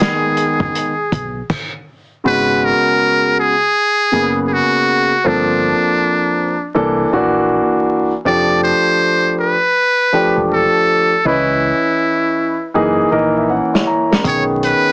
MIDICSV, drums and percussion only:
0, 0, Header, 1, 2, 480
1, 0, Start_track
1, 0, Tempo, 750000
1, 1439, Time_signature, 4, 2, 24, 8
1, 9550, End_track
2, 0, Start_track
2, 0, Title_t, "Drums"
2, 0, Note_on_c, 9, 42, 82
2, 9, Note_on_c, 9, 38, 105
2, 62, Note_off_c, 9, 42, 0
2, 73, Note_off_c, 9, 38, 0
2, 237, Note_on_c, 9, 42, 81
2, 301, Note_off_c, 9, 42, 0
2, 385, Note_on_c, 9, 36, 74
2, 449, Note_off_c, 9, 36, 0
2, 482, Note_on_c, 9, 42, 73
2, 546, Note_off_c, 9, 42, 0
2, 718, Note_on_c, 9, 36, 105
2, 721, Note_on_c, 9, 42, 70
2, 782, Note_off_c, 9, 36, 0
2, 785, Note_off_c, 9, 42, 0
2, 958, Note_on_c, 9, 36, 104
2, 958, Note_on_c, 9, 49, 74
2, 1022, Note_off_c, 9, 36, 0
2, 1022, Note_off_c, 9, 49, 0
2, 8800, Note_on_c, 9, 38, 79
2, 8864, Note_off_c, 9, 38, 0
2, 9040, Note_on_c, 9, 38, 91
2, 9104, Note_off_c, 9, 38, 0
2, 9116, Note_on_c, 9, 36, 107
2, 9119, Note_on_c, 9, 42, 89
2, 9180, Note_off_c, 9, 36, 0
2, 9183, Note_off_c, 9, 42, 0
2, 9363, Note_on_c, 9, 42, 71
2, 9427, Note_off_c, 9, 42, 0
2, 9550, End_track
0, 0, End_of_file